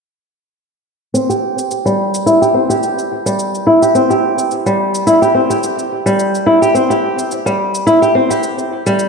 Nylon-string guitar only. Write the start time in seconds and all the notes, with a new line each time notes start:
1.14 C4
1.29 G4
1.86 G3
2.26 E4
2.42 G4
2.54 C4
2.70 G4
3.26 G3
3.67 E4
3.82 G4
3.95 C4
4.10 G4
4.66 G3
5.07 E4
5.22 G4
5.35 C4
5.50 G4
6.06 G3
6.46 E4
6.62 G4
6.74 C4
6.90 G4
7.46 G3
7.87 E4
8.02 G4
8.15 C4
8.30 G4
8.86 G3